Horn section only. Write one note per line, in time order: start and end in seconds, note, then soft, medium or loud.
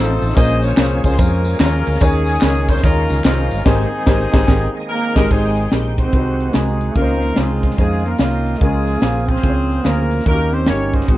0.00 0.34 D#4 medium
0.00 0.34 A4 medium
0.00 0.36 C5 loud
0.35 0.62 G#4 medium
0.35 1.02 C5 medium
0.35 0.63 D#5 loud
0.62 1.19 F4 medium
0.62 1.42 G#4 medium
0.62 1.01 C#5 loud
1.03 1.19 C5 medium
1.18 1.60 C#4 medium
1.18 1.60 F4 medium
1.18 1.58 A#4 loud
1.60 1.99 C#4 medium
1.60 1.99 F4 medium
1.60 1.98 A#4 medium
2.01 2.80 C#4 medium
2.01 2.69 G#4 medium
2.68 2.83 C5 medium
2.83 3.24 C#4 medium
2.83 3.23 F4 medium
2.83 3.22 A#4 medium
3.23 3.63 C#4 medium
3.23 3.63 F4 medium
3.23 3.62 A#4 medium
3.66 4.72 C4 medium
3.66 4.72 D#4 medium
3.66 4.72 G#4 medium
4.89 5.14 A#4 medium
5.17 5.30 A#4 medium
5.31 6.09 C4 medium
5.31 5.99 D#4 medium
5.31 5.72 G#4 medium
5.99 6.54 D#4 medium
5.99 6.78 F#4 medium
5.99 6.51 C5 medium
6.54 6.93 D#4 medium
6.54 6.93 G#4 medium
6.95 7.74 D#4 medium
6.95 7.37 F4 medium
6.95 7.37 A#4 medium
7.38 7.77 C4 medium
7.38 7.78 F4 medium
7.38 7.78 G#4 medium
7.79 8.57 C4 medium
7.79 8.19 F4 medium
7.79 8.04 G#4 medium
8.06 8.19 A#4 medium
8.21 8.59 D#4 medium
8.21 8.58 F4 medium
8.21 8.58 A#4 medium
8.61 9.28 F4 medium
8.61 9.29 G#4 medium
9.29 9.84 F4 medium
9.29 10.08 G#4 medium
9.29 9.85 C5 medium
9.85 10.23 F4 medium
9.85 10.26 A#4 medium
10.27 11.05 C#4 medium
10.27 11.05 G4 medium
10.27 10.51 A#4 medium
10.53 10.67 C5 medium
10.67 10.92 C#5 loud
10.94 11.18 D#4 medium
10.94 11.18 F#4 medium
10.94 11.18 C5 medium